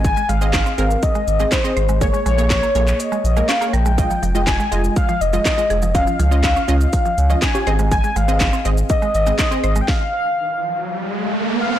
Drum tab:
HH |x-x-x-x-x-x-x-x-|x-x-x-x-x-x-x-x-|x-x-x-x-x-x-x-x-|x-x-x-x-x-x-x-x-|
SH |xxxxxxxxxxxxxxxx|xxxxxxxxxxxxxxxx|xxxxxxxxxxxxxxxx|xxxxxxxxxxxxxxxx|
CP |----x-------x---|----x--x----x---|----x-------x---|----x-------x---|
SD |----o-------o---|----o-------o---|----o-------o---|----o-------o---|
BD |o---o---o---o---|o---o-----------|o---o---o---o---|o---o---o---o---|

HH |x-x-x-x-x-x-x-x-|----------------|
SH |xxxxxxxxxxxxxxxx|----------------|
CP |----x-------x---|----------------|
SD |----o-------o---|o---------------|
BD |o---o---o---o---|o---------------|